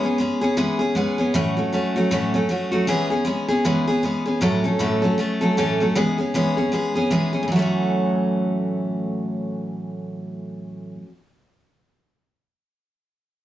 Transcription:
0.03 0.18 B3 medium
0.03 0.19 C#4 medium
0.03 0.19 G#4 medium
0.18 0.42 G#3 medium
0.18 0.42 B3 medium
0.18 0.41 C#4 medium
0.18 0.40 G#4 medium
0.41 0.56 B3 medium
0.41 0.57 C#4 medium
0.41 0.57 G#4 medium
0.57 0.80 E3 loud
0.57 0.80 G#3 medium
0.57 0.80 B3 medium
0.57 0.79 C#4 medium
0.57 0.78 G#4 medium
0.79 0.95 B3 medium
0.79 0.96 C#4 medium
0.79 0.95 G#4 medium
0.95 1.19 G#3 medium
0.95 1.19 B3 medium
0.95 1.18 C#4 medium
0.95 1.17 G#4 medium
1.18 1.34 B3 soft
1.18 1.34 C#4 medium
1.18 1.34 G#4 medium
1.34 1.57 A2 medium
1.34 1.57 E3 medium
1.34 1.58 F#3 medium
1.34 1.57 A3 medium
1.34 1.57 C#4 loud
1.34 1.56 F#4 loud
1.57 1.71 F#3 soft
1.57 1.72 A3 medium
1.57 1.73 C#4 medium
1.57 1.73 F#4 medium
1.72 1.96 F#3 medium
1.72 1.96 A3 medium
1.72 1.95 C#4 medium
1.72 1.95 F#4 medium
1.96 2.10 F#3 medium
1.96 2.11 A3 medium
1.96 2.11 C#4 medium
1.96 2.11 F#4 medium
2.11 2.34 A2 medium
2.11 2.34 E3 loud
2.11 2.34 F#3 loud
2.11 2.34 A3 loud
2.11 2.33 C#4 loud
2.11 2.33 F#4 medium
2.34 2.48 F#3 soft
2.34 2.49 A3 medium
2.34 2.50 C#4 medium
2.34 2.50 F#4 medium
2.49 2.72 F#3 medium
2.49 2.72 A3 medium
2.49 2.71 C#4 medium
2.49 2.70 F#4 medium
2.72 2.87 F#3 soft
2.72 2.88 A3 medium
2.72 2.87 C#4 medium
2.72 2.88 F#4 medium
2.87 3.11 E3 medium
2.87 3.11 G#3 medium
2.87 3.11 B3 loud
2.87 3.10 C#4 medium
2.87 3.09 G#4 loud
3.10 3.25 B3 soft
3.10 3.26 C#4 medium
3.10 3.26 G#4 medium
3.25 3.49 G#3 medium
3.25 3.49 B3 medium
3.25 3.49 C#4 medium
3.25 3.47 G#4 medium
3.48 3.64 B3 medium
3.48 3.65 C#4 medium
3.48 3.65 G#4 medium
3.65 3.88 E3 medium
3.65 3.88 G#3 medium
3.65 3.88 B3 medium
3.65 3.88 C#4 medium
3.65 3.86 G#4 loud
3.87 4.03 B3 medium
3.87 4.04 C#4 medium
3.87 4.03 G#4 medium
4.03 4.26 G#3 medium
4.03 4.27 B3 medium
4.03 4.26 C#4 medium
4.03 4.24 G#4 medium
4.26 4.42 B3 medium
4.26 4.41 C#4 soft
4.26 4.42 G#4 medium
4.41 4.64 A2 medium
4.41 4.65 E3 medium
4.41 4.65 F#3 loud
4.41 4.64 A3 medium
4.41 4.64 C#4 loud
4.41 4.63 A4 loud
4.64 4.79 F#3 soft
4.64 4.79 A3 soft
4.64 4.79 C#4 medium
4.64 4.80 A4 medium
4.79 5.03 A2 medium
4.79 5.03 E3 medium
4.79 5.03 F#3 medium
4.79 5.03 A3 loud
4.79 5.02 C#4 medium
4.79 5.01 A4 medium
5.02 5.17 F#3 medium
5.02 5.18 A3 medium
5.02 5.19 C#4 medium
5.02 5.18 A4 medium
5.18 5.41 F#3 medium
5.18 5.41 A3 medium
5.18 5.40 C#4 medium
5.18 5.40 A4 medium
5.41 5.57 F#3 medium
5.41 5.57 A3 medium
5.41 5.57 C#4 medium
5.41 5.57 A4 medium
5.57 5.80 A2 medium
5.57 5.80 E3 medium
5.57 5.81 F#3 medium
5.57 5.81 A3 medium
5.57 5.80 C#4 medium
5.57 5.79 A4 medium
5.80 5.96 F#3 medium
5.80 5.96 A3 medium
5.80 5.95 C#4 medium
5.80 5.96 A4 medium
5.95 6.18 E3 loud
5.95 6.19 G#3 loud
5.95 6.19 B3 loud
5.95 6.18 C#4 loud
5.95 6.17 G#4 loud
6.18 6.34 B3 soft
6.18 6.34 C#4 medium
6.18 6.34 G#4 medium
6.34 6.57 E3 medium
6.34 6.57 G#3 medium
6.34 6.57 B3 medium
6.34 6.57 C#4 loud
6.34 6.56 G#4 medium
6.57 6.72 B3 medium
6.57 6.72 C#4 medium
6.57 6.72 G#4 medium
6.72 6.95 G#3 medium
6.72 6.95 B3 medium
6.72 6.95 C#4 medium
6.72 6.94 G#4 medium
6.95 7.10 B3 soft
6.95 7.11 C#4 medium
6.95 7.11 G#4 medium
7.10 7.33 E3 medium
7.10 7.34 G#3 medium
7.10 7.34 B3 medium
7.10 7.33 C#4 medium
7.10 7.32 G#4 medium
7.33 7.50 B3 soft
7.33 7.49 C#4 medium
7.33 7.48 G#4 medium
7.43 10.93 A2 medium
7.48 10.98 E3 medium
7.48 11.02 F#3 medium
7.56 11.06 A3 medium
7.56 11.09 C#4 medium
7.62 11.12 F#4 loud

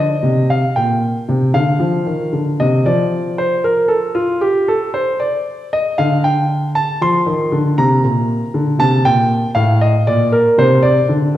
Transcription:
0.00 0.49 D#5 medium
0.23 0.61 C3 soft
0.50 0.76 F5 medium
0.76 1.14 A#2 soft
0.76 1.55 G5 medium
1.29 1.54 C3 soft
1.54 1.79 D3 soft
1.54 2.43 F5 medium
1.80 2.05 F3 soft
2.06 2.32 D#3 soft
2.33 2.58 D3 soft
2.60 2.85 C3 soft
2.60 2.86 D#5 medium
2.86 5.11 F3 soft
2.86 3.37 D5 medium
3.38 3.64 C5 medium
3.64 3.90 A#4 medium
3.88 4.15 A4 medium
4.15 4.42 F4 medium
4.41 4.68 G4 medium
4.68 4.94 A4 medium
4.94 5.20 C5 medium
5.20 5.64 D5 medium
5.73 5.99 D#5 medium
5.98 6.73 D3 medium
5.98 6.24 F5 medium
6.24 6.68 G5 medium
6.75 7.01 A5 medium
7.01 7.26 F3 soft
7.01 7.67 C6 medium
7.26 7.51 D#3 soft
7.52 7.77 D3 soft
7.78 8.03 C3 soft
7.78 8.65 A#5 medium
8.04 8.41 A#2 soft
8.54 8.79 D3 soft
8.79 9.04 C3 soft
8.79 9.06 A5 medium
9.05 9.43 A#2 soft
9.05 9.50 G5 medium
9.55 9.93 A2 soft
9.55 9.82 F5 medium
9.81 10.08 D#5 medium
10.07 10.45 A#2 medium
10.07 10.34 D5 medium
10.32 10.60 A#4 medium
10.58 10.96 C3 medium
10.58 10.85 C5 medium
10.83 11.10 D5 medium
11.09 11.35 D3 soft

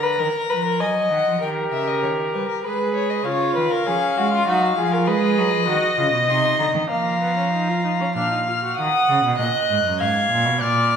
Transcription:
0.00 0.18 D3 medium
0.00 0.20 B4 medium
0.00 0.82 A#5 medium
0.19 0.27 D#3 medium
0.19 0.51 A#4 loud
0.50 0.82 F3 medium
0.50 0.65 B4 medium
0.65 0.82 A#4 medium
0.80 1.10 F#3 medium
0.80 1.41 D#5 medium
0.80 1.11 G#5 medium
1.11 1.17 D#3 medium
1.11 1.41 F#5 medium
1.27 1.41 F3 medium
1.42 1.70 D#3 medium
1.42 2.60 G4 medium
1.42 2.65 A#4 medium
1.42 1.50 G5 medium
1.72 2.04 C#3 medium
1.72 1.89 E5 medium
1.88 2.03 D#5 medium
2.03 2.33 D#3 medium
2.03 2.11 C#5 medium
2.34 2.42 G3 medium
2.34 2.48 B4 medium
2.49 2.63 A#4 medium
2.64 3.24 G#3 medium
2.64 3.27 G#4 medium
2.64 2.94 B4 medium
2.64 3.25 B4 medium
2.94 3.11 C#5 medium
3.10 3.26 D#5 medium
3.25 3.55 C#3 medium
3.25 3.86 F4 medium
3.25 3.55 C#5 medium
3.25 5.09 F5 medium
3.55 3.64 D#3 medium
3.55 3.72 B4 medium
3.71 3.88 A#4 medium
3.86 3.94 F3 medium
3.86 4.46 C#4 medium
3.86 4.19 G#4 medium
4.17 4.46 G#3 medium
4.17 4.32 F#4 medium
4.32 4.47 F4 medium
4.47 4.77 F#3 medium
4.47 4.77 D#4 medium
4.47 4.77 F#4 medium
4.77 5.09 F3 medium
4.77 5.09 F4 medium
4.77 4.94 G#4 medium
4.92 5.09 A#4 medium
5.07 5.39 G#3 loud
5.07 5.67 G#4 medium
5.07 5.67 B4 medium
5.07 6.31 D#5 medium
5.38 5.54 F#3 medium
5.52 5.67 F3 medium
5.67 5.75 D#3 medium
5.67 5.97 F#4 medium
5.67 6.88 D#5 loud
5.98 6.12 C#3 medium
5.98 6.06 F4 medium
6.13 6.29 B2 medium
6.28 6.58 C3 medium
6.28 6.92 D#4 medium
6.28 6.59 C6 medium
6.59 6.65 D3 medium
6.59 6.67 A#5 medium
6.74 6.81 D#3 medium
6.90 8.17 F3 medium
6.90 7.21 A#3 medium
6.90 8.14 F5 medium
6.90 8.13 A#5 medium
7.21 7.36 B3 medium
7.37 7.52 C#4 medium
7.53 7.70 D#4 medium
7.69 7.84 F4 medium
7.84 7.91 D#4 medium
8.00 8.07 C#4 medium
8.16 8.77 A#2 medium
8.16 8.31 D4 medium
8.16 8.77 F5 medium
8.16 8.76 F6 medium
8.31 8.38 D#4 medium
8.48 8.54 F4 medium
8.63 8.78 F#4 medium
8.77 8.86 D#3 loud
8.77 9.36 F#5 medium
8.77 9.35 D#6 medium
9.09 9.23 C#3 medium
9.24 9.39 B2 medium
9.38 9.47 A#2 medium
9.38 10.02 D#5 medium
9.38 9.99 F#6 medium
9.70 9.84 G#2 medium
9.85 10.02 F#2 medium
10.00 10.30 G#2 medium
10.00 10.60 F5 medium
10.00 10.63 G#6 medium
10.31 10.47 A#2 loud
10.45 10.62 B2 medium
10.61 10.96 A#2 loud
10.61 10.96 D5 medium
10.61 10.96 F6 medium

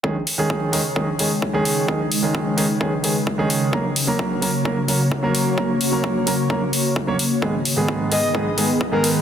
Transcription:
0.03 7.38 C#3 medium
0.03 0.14 D#3 medium
0.03 0.14 G#3 medium
0.03 3.69 G#3 medium
0.03 0.14 C#4 medium
0.03 3.69 D#4 medium
0.03 0.14 G#4 medium
0.03 1.87 C#5 medium
0.03 kick loud
0.27 open hi-hat medium
0.38 0.70 D#3 medium
0.38 0.70 G#3 medium
0.38 0.70 C#4 medium
0.38 0.71 G#4 medium
0.50 kick loud
0.72 0.79 D#3 medium
0.72 0.79 G#3 medium
0.72 0.79 C#4 medium
0.72 0.80 G#4 medium
0.72 open hi-hat medium
0.96 1.06 D#3 medium
0.96 1.06 G#3 medium
0.96 1.06 C#4 medium
0.96 1.07 G#4 medium
0.96 kick loud
1.19 1.29 D#3 medium
1.19 1.29 G#3 medium
1.19 1.29 C#4 medium
1.19 1.30 G#4 medium
1.19 open hi-hat medium
1.42 kick loud
1.53 1.85 D#3 medium
1.53 1.86 G#3 medium
1.53 1.86 C#4 medium
1.53 1.86 G#4 loud
1.65 open hi-hat medium
1.88 1.98 D#3 medium
1.88 1.98 G#3 medium
1.88 1.99 C#4 medium
1.88 1.99 G#4 medium
1.88 3.71 B4 medium
1.88 kick loud
2.12 open hi-hat medium
2.22 2.55 D#3 medium
2.22 2.55 G#3 medium
2.22 2.55 C#4 medium
2.22 2.55 G#4 medium
2.35 kick loud
2.57 2.64 D#3 medium
2.57 2.64 G#3 medium
2.57 2.64 C#4 medium
2.57 2.64 G#4 medium
2.57 open hi-hat medium
2.80 2.90 D#3 medium
2.80 2.91 G#3 medium
2.80 2.91 C#4 medium
2.80 2.91 G#4 medium
2.80 kick loud
3.03 3.14 D#3 medium
3.03 3.14 G#3 medium
3.03 3.14 C#4 medium
3.03 3.14 G#4 medium
3.03 open hi-hat loud
3.27 kick loud
3.38 3.70 D#3 medium
3.38 3.70 G#3 medium
3.38 3.70 C#4 medium
3.38 3.71 G#4 loud
3.50 open hi-hat medium
3.72 3.83 F#3 medium
3.72 3.83 A#3 medium
3.72 7.39 A#3 medium
3.72 3.83 C#4 medium
3.72 7.39 F#4 medium
3.72 3.83 A#4 medium
3.72 7.39 C#5 medium
3.72 kick loud
3.96 open hi-hat loud
4.07 4.39 F#3 medium
4.07 4.39 A#3 medium
4.07 4.40 C#4 medium
4.07 4.40 A#4 medium
4.19 kick loud
4.42 4.48 F#3 medium
4.42 4.48 A#3 medium
4.42 4.49 C#4 medium
4.42 4.49 A#4 medium
4.42 open hi-hat medium
4.65 4.75 F#3 medium
4.65 4.75 A#3 medium
4.65 4.76 C#4 medium
4.65 4.76 A#4 medium
4.65 kick loud
4.88 4.98 F#3 medium
4.88 4.98 A#3 medium
4.88 4.99 C#4 medium
4.88 4.99 A#4 medium
4.88 open hi-hat loud
5.12 kick loud
5.22 5.55 F#3 medium
5.22 5.55 A#3 medium
5.22 5.55 C#4 medium
5.22 5.55 A#4 medium
5.35 open hi-hat medium
5.57 5.67 F#3 medium
5.57 5.68 A#3 medium
5.57 5.68 C#4 medium
5.57 5.68 A#4 medium
5.57 kick loud
5.81 open hi-hat medium
5.92 6.24 F#3 medium
5.92 6.24 A#3 medium
5.92 6.24 C#4 medium
5.92 6.24 A#4 medium
6.04 kick loud
6.26 6.33 F#3 medium
6.26 6.33 A#3 medium
6.26 6.33 C#4 medium
6.26 6.34 A#4 medium
6.26 open hi-hat medium
6.49 6.60 F#3 medium
6.49 6.60 A#3 medium
6.49 6.60 C#4 medium
6.49 6.60 A#4 medium
6.49 kick loud
6.73 open hi-hat loud
6.96 kick loud
7.07 7.14 F#3 medium
7.07 7.14 A#3 medium
7.07 7.14 C#4 medium
7.07 7.14 C#5 loud
7.19 open hi-hat medium
7.42 7.52 G#2 medium
7.42 7.52 D#3 medium
7.42 9.22 D#3 medium
7.42 7.52 G#3 medium
7.42 9.22 B3 medium
7.42 7.53 B3 medium
7.42 9.22 G#4 medium
7.42 7.53 G#4 medium
7.42 9.22 B4 medium
7.42 kick loud
7.65 open hi-hat medium
7.76 8.08 G#2 medium
7.76 8.09 D#3 medium
7.76 8.09 G#3 medium
7.76 8.09 B3 medium
7.76 8.09 G#4 medium
7.88 kick loud
8.11 8.18 G#2 medium
8.11 8.18 D#3 medium
8.11 8.18 G#3 medium
8.11 8.18 B3 medium
8.11 8.18 G#4 medium
8.11 8.28 D#5 medium
8.11 open hi-hat medium
8.34 8.44 G#2 medium
8.34 8.45 D#3 medium
8.34 8.45 G#3 medium
8.34 8.45 B3 medium
8.34 8.45 G#4 medium
8.34 kick loud
8.57 8.67 G#2 medium
8.57 8.68 D#3 medium
8.57 8.68 G#3 medium
8.57 8.68 B3 medium
8.57 8.68 G#4 medium
8.57 open hi-hat medium
8.81 kick loud
8.92 9.22 G#2 medium
8.92 9.22 D#3 medium
8.92 9.22 G#3 medium
8.92 9.22 B3 medium
8.92 9.22 G#4 loud
8.92 9.09 A#4 medium
9.04 open hi-hat medium

